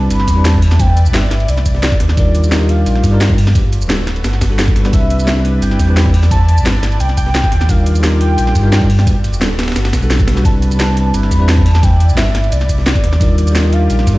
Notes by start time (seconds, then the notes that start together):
Already playing: G3 C4 D4 E4 B4 D5 A5
0.10 G1 B5, closed hi-hat, ride, shaker
0.20 snare
0.28 E2, kick, snare, closed hi-hat, ride, shaker
0.35 G3 C4 D4 E4 B4
0.45 A5, snare, closed hi-hat, ride, shaker
0.52 G3 C4 D4 E4 B4, kick, snare
0.62 closed hi-hat, open hi-hat
0.71 snare, shaker
0.78 G3 C4 D4 E4 C5 G5, kick, closed hi-hat, ride, shaker
0.97 closed hi-hat, ride, shaker
1.06 G1, shaker
1.12 G3 C4 D4 E4 B4 E5, snare, closed hi-hat, ride, shaker
1.23 snare
1.31 snare, closed hi-hat, ride
1.40 ride
1.48 C2 D5, closed hi-hat, ride, shaker
1.57 snare, ride
1.66 kick, closed hi-hat, ride, shaker
1.75 snare
1.83 snare, closed hi-hat, ride, shaker
1.92 kick, snare, shaker
2.00 D#2 F4 G4, snare, closed hi-hat, ride
2.09 snare, shaker
2.16 D#2 G3 D4 D#4 F4 A#4 D5, kick, closed hi-hat, ride, shaker
2.35 closed hi-hat, ride, shaker
2.44 ride, shaker
2.49 G3 D4 D#4 D#5, snare, closed hi-hat, ride, shaker
2.54 F4 A#4
2.61 snare
2.69 F5, closed hi-hat, ride
2.86 A#1, closed hi-hat, ride, shaker
2.95 snare
3.04 G2, kick, snare, closed hi-hat, ride, shaker
3.11 G3 D4 D#4 F4 A#4
3.21 snare, closed hi-hat, ride, shaker
3.28 G3 D4 D#4 F4 A#4, kick, snare
3.38 closed hi-hat, open hi-hat
3.47 snare, shaker
3.54 G1 G3 B3 D4 F#4 A4 B4, kick, closed hi-hat, ride, shaker
3.73 closed hi-hat, ride, shaker
3.81 D1, shaker
3.88 G3 B3 D4 F#4 A4, snare, closed hi-hat, ride, shaker
3.99 snare
4.07 snare, closed hi-hat, ride
4.16 ride
4.24 G1, snare, closed hi-hat, ride, shaker
4.33 snare, ride
4.41 kick, snare, closed hi-hat, ride, shaker
4.49 G3 B3 D4 F#4 A4, snare
4.59 snare, closed hi-hat, ride, shaker
4.68 kick, snare, shaker
4.76 G1, snare, closed hi-hat, ride
4.83 G3 B3 D4 F#4 B4, snare, shaker
4.92 C2 G3 C4 D4 E4 B4 D5 E5, kick, closed hi-hat, ride, shaker
5.10 closed hi-hat, ride, shaker
5.19 ride, shaker
5.24 G3 C4 D4, snare, closed hi-hat, ride, shaker
5.29 E4 B4
5.37 snare
5.45 closed hi-hat, ride
5.62 G1 G5, closed hi-hat, ride, shaker
5.71 snare
5.79 E2, kick, snare, closed hi-hat, ride, shaker
5.87 G3 C4 D4 E4 B4
5.97 snare, closed hi-hat, ride, shaker
6.04 G3 C4 D4 E4 B4, kick, snare
6.14 closed hi-hat, open hi-hat
6.23 snare, shaker
6.30 G3 C4 D4 E4 C5 A5, kick, closed hi-hat, ride, shaker
6.48 closed hi-hat, ride, shaker
6.58 G1, shaker
6.64 G3 C4 D4 E4 B4, snare, closed hi-hat, ride, shaker
6.75 snare
6.83 snare, closed hi-hat, ride
6.92 ride
7.00 C2 G5, closed hi-hat, ride, shaker
7.09 snare, ride
7.17 G5, kick, closed hi-hat, ride, shaker
7.26 snare
7.35 snare, closed hi-hat, ride, shaker
7.44 kick, snare, shaker
7.52 D#2 F4 G4, snare, closed hi-hat, ride
7.61 snare, shaker
7.67 D#2 G3 D4 D#4 F4 A#4 F5, kick, closed hi-hat, ride, shaker
7.86 closed hi-hat, ride, shaker
7.95 ride, shaker
8.00 G3 D4 D#4, snare, closed hi-hat, ride, shaker
8.05 F4 A#4
8.12 snare
8.21 G5, closed hi-hat, ride
8.38 A#1, closed hi-hat, ride, shaker
8.47 snare
8.55 G2, kick, snare, closed hi-hat, ride, shaker
8.63 G3 D4 D#4 F4 A#4
8.72 snare, closed hi-hat, ride, shaker
8.80 G3 D4 D#4 F4 A#4, kick, snare
8.90 closed hi-hat, open hi-hat
8.99 snare, shaker
9.05 G1 G3 B3 D4 F#4 A4 B4, kick, closed hi-hat, ride, shaker
9.24 closed hi-hat, ride, shaker
9.33 D1, shaker
9.40 G3 B3 D4 F#4 A4, snare, closed hi-hat, ride, shaker
9.51 snare
9.59 snare, closed hi-hat, ride
9.63 snare, ride
9.68 snare, ride
9.72 snare, ride
9.76 G1, snare, closed hi-hat, ride, shaker
9.85 snare, ride
9.93 B1, kick, snare, closed hi-hat, ride, shaker
10.01 G3 B3 D4 F#4 A4, snare, shaker
10.10 snare, closed hi-hat, ride, shaker
10.19 kick, snare, ride, shaker
10.28 snare, closed hi-hat, ride
10.35 G3 B3 D4 F#4 B4, snare, shaker
10.43 C2 G3 C4 D4 E4 B4 D5 A5, kick, closed hi-hat, ride, shaker
10.62 closed hi-hat, ride, shaker
10.71 ride, shaker
10.76 G3 C4 D4, snare, closed hi-hat, ride, shaker
10.81 E4 B4
10.89 snare
10.97 closed hi-hat, ride
11.14 G1 B5, closed hi-hat, ride, shaker
11.23 snare
11.31 E2, kick, snare, closed hi-hat, ride, shaker
11.38 G3 C4 D4 E4 B4
11.49 A5, snare, closed hi-hat, ride, shaker
11.56 G3 C4 D4 E4 B4, kick, snare
11.66 closed hi-hat, open hi-hat
11.75 snare, shaker
11.81 G3 C4 D4 E4 C5 G5, kick, closed hi-hat, ride, shaker
12.00 closed hi-hat, ride, shaker
12.09 G1, shaker
12.15 G3 C4 D4 E4 B4 E5, snare, closed hi-hat, ride, shaker
12.27 snare
12.35 snare, closed hi-hat, ride
12.44 ride
12.52 C2 D5, closed hi-hat, ride, shaker
12.61 snare, ride
12.69 kick, closed hi-hat, ride, shaker
12.78 snare
12.86 snare, closed hi-hat, ride, shaker
12.95 kick, snare, shaker
13.04 D#2 F4 G4, snare, closed hi-hat, ride
13.13 snare, shaker
13.19 D#2 G3 D4 D#4 F4 A#4 D5, kick, closed hi-hat, ride, shaker
13.38 closed hi-hat, ride, shaker
13.47 ride, shaker
13.52 G3 D4 D#4 D#5, snare, closed hi-hat, ride, shaker
13.57 F4 A#4
13.64 snare
13.73 F5, closed hi-hat, ride
13.90 A#1, closed hi-hat, ride, shaker
13.99 snare
14.07 G2, kick, snare, closed hi-hat, ride, shaker
14.14 G3 D4